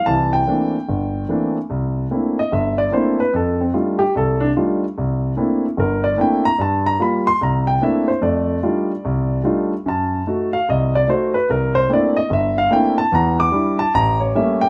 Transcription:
X:1
M:4/4
L:1/8
Q:"Swing" 1/4=147
K:Cmix
V:1 name="Grand piano"
a g6 z | z3 _e =e d c =B | A C z G A D z2 | z4 B d g b |
a b =b c' _b g e c | d6 z2 | a3 f ^d =d c =B | B c d _e =e f g a |
b d' z a b ^c e g |]
V:2 name="Grand piano"
[C,,E,]2 [E,A,B,CD] z G,,,2 [E,A,B,CD] z | C,,2 [A,B,CDE] z G,,,2 [A,B,CDE] z | F,,2 [G,A,D_EF] z C,,2 [G,A,DEF] z | C,,2 [A,B,CDE] z G,,,2 [A,B,CDE] z |
G,,2 [G,B,F] z C,,2 [A,B,CDE] z | [F,,A,]2 [G,A,D_EF] z C,,2 [G,A,DEF] z | ^F,,2 [A,^D^F] z C,,2 [A,DF] z | C,,2 [A,B,CDE] z G,,,2 [A,B,CDE] z |
[E,,E,]2 [G,DE] z A,,,2 [G,A,B,^C] z |]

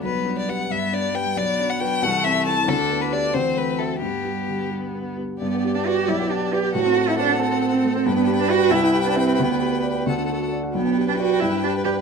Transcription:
X:1
M:6/8
L:1/16
Q:3/8=90
K:G
V:1 name="Violin"
B3 d f2 e2 d2 g2 | d3 f g2 f2 e2 a2 | A3 B d2 c2 B2 A2 | G6 z6 |
d12 | f12 | g12- | g6 f4 z2 |
g12 |]
V:2 name="Grand piano"
B,,,2 D2 [GB]2 G,,2 D2 [GB]2 | B,,,2 D2 [FB]2 C,,2 C2 [EA]2 | D,,2 B,2 [Gd]2 D,,2 A,2 [Fe]2 | G,,2 G2 D,2 G2 B,2 G2 |
G,, B, G d B g B,,, B, G d B g | A,, C F A c f a c A C A, C | G,, D G B d g C,, E G B e g | D,, D G B d g D,, D F A d f |
B,,, D G B d g G,, D G B d g |]
V:3 name="Cello"
G,6 G,6 | F,6 E,6 | D,6 E,6 | G,8- G,2 z2 |
B,3 D F2 E2 D2 G2 | F3 E D2 C6 | B,3 D F2 E3 D C2 | B,6 z6 |
B,3 D F2 E2 D2 G2 |]
V:4 name="Violin"
B,6 B,6 | B,6 A,6 | D6 C6 | B,8- B,2 z2 |
G12 | A12 | B12- | B6 A4 z2 |
B12 |]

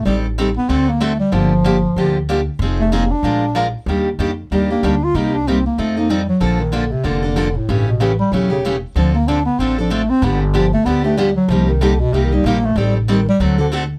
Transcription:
X:1
M:4/4
L:1/8
Q:"Swing" 1/4=189
K:Gm
V:1 name="Steel-string acoustic guitar"
[E,G,CGA] z [E,G,CGA] z [D,A,C^FA] z [D,A,CFA] z | [D,F,B,DG] z [D,F,B,DG] z [D,F,B,DG] z [D,F,B,DG] z | [F,CE_A] z [F,CEA] z [F,_A,DFB] z [F,A,DFB] z | [E,G,B,DG] z [E,G,B,DG] z [E,G,B,DG] [B,DG] [E,G,B,DG] z |
[C,G,B,EG] z [C,G,B,EG] z [F,CEA] [CEA] [F,CEA] z | [D,F,B,DA] z [D,F,B,DA] z [D,F,B,DA] [B,DA] [D,F,B,DA] z | [^C,=E,A,^CG] z [C,E,A,CG] z [C,E,A,CG] [A,CG] [C,E,A,CG] z | [D,F,CDA] z [D,F,CDA] z [D,F,CDA] [CDA] [D,F,CDA] z |
[D,F,=B,DG] z [D,F,B,DG] z [D,F,B,DG] [B,DG] [D,F,B,DG] z | [C,G,B,EG] z [C,G,B,EG] z [C,G,B,EG] [B,EG] [C,G,B,EG] z | [E,G,CGA] z [E,G,CGA] z [D,A,C^FA] [CFA] [D,A,CFA] z |]
V:2 name="Bass clarinet" clef=bass
G, z2 =B, C _B, A, G, | F,6 z2 | z A, B, D3 z2 | z4 G, B, D F |
E D C B, A, B, G, ^F, | F, E, D, C, D,3 A,, | G,, =B,, =E, G, ^F, ^C, z2 | F, B, D =B, C F, A, C |
=B, D, F, A, B, A, G, ^F, | F, E, D, =B,, (3C, E, G, _B, A, | G, C, E, G, ^F, D, z2 |]
V:3 name="Upright bass" clef=bass
A,,,4 D,,4 | G,,,4 D,,4 | F,,,4 B,,,4 | E,,2 F,,2 E,,2 D,,2 |
C,,4 F,,4 | B,,,4 F,,,4 | A,,,4 =E,,,4 | D,,4 A,,,4 |
G,,,4 D,,4 | C,,4 C,,2 B,,,2 | A,,,4 D,,4 |]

